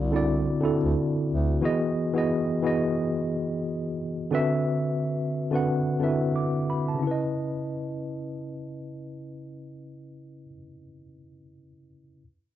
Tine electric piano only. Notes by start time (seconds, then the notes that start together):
Already playing: D3 C4 E4 F#4 D5
0.12 D3 C4 E4 F#4
0.16 D5
0.61 D3 C4 E4 F#4
0.65 A4
1.61 E3 B3 F#4 G#4
1.65 D#5
2.13 E3 B3 F#4 G#4
2.18 D#5
2.62 E3 B3 F#4 G#4
2.67 D#5
4.31 D3 C4 F#4 B4 E5
5.51 D3 C4 F#4 B4
5.55 F#5
6.00 D3 C4 E4 B4
6.04 E5
6.08 F#4
6.36 D6
6.70 B5
6.88 A5
6.94 C#3
6.99 C#4 E4
7.07 B4
7.11 D#5